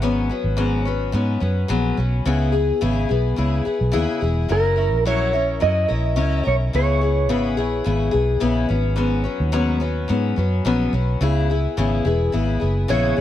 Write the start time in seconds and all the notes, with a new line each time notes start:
Already playing: G#1
0.02 G#2 F#3 B3 C#4
0.29 F#3 B3 C#4
0.44 G#1
0.57 G#2 F#3 B3 C#4
0.85 F#3 B3 C#4
1.12 G#2 F#3 B3 C#4
1.40 F#2 F#3 B3 C#4
1.68 A#1 G#2 F#3 B3 C#4
1.97 B1 F#3 B3 C#4
2.25 C#2 C#3 B3 E4 G#4
2.52 B3 E4 G#4
2.81 G#1 C#3 B3 E4 G#4
3.09 B1 B3 E4 G#4
3.36 C#2 C#3 B3 E4 G#4
3.65 B3 E4 G#4
3.81 B1
3.92 D#2 C#3 B3 E4 G#4
4.21 E1 B3 E4 G#4
4.48 F#1 F#3 C#4 E4 A#4
4.76 C#4 E4 A#4
4.93 A#1
5.05 F#3 C#4 E4 A#4 C#5
5.33 C#4 E4 A#4
5.60 F#2 F#3 C#4 E4 A#4 D#5
5.89 A#1 C#4 E4 A#4
6.16 C#2 F#3 C#4 E4 A#4
6.44 B1 C#4 E4 A#4
6.48 C#5
6.73 C#2 C#3 B3 E4 G#4 C#5
7.01 B3 E4 G#4
7.29 G#1 C#3 B3 E4 G#4
7.57 A#1 B3 E4 G#4
7.84 G#1 C#3 B3 E4 G#4
8.11 B1 B3 E4 G#4
8.40 A#1 C#3 B3 E4 G#4
8.69 G#1 F#3 B3 C#4
8.96 G#2 F#3 B3 C#4
9.24 F#3 B3 C#4
9.40 D#2
9.52 G#2 F#3 B3 C#4
9.80 F#3 B3 C#4
10.08 G#2 F#3 B3 C#4
10.36 F#2 F#3 B3 C#4
10.65 A#1 G#2 F#3 B3 C#4
10.93 B1 F#3 B3 C#4
11.21 C#2 C#3 B3 E4 G#4
11.50 B3 E4 G#4
11.77 G#1 C#3 B3 E4 G#4
12.05 E1 B3 E4 G#4
12.32 G#1 C#3 B3 E4 G#4
12.60 F#1 B3 E4 G#4
12.88 A#1 C#3 B3 E4 G#4 C#5
13.17 G#4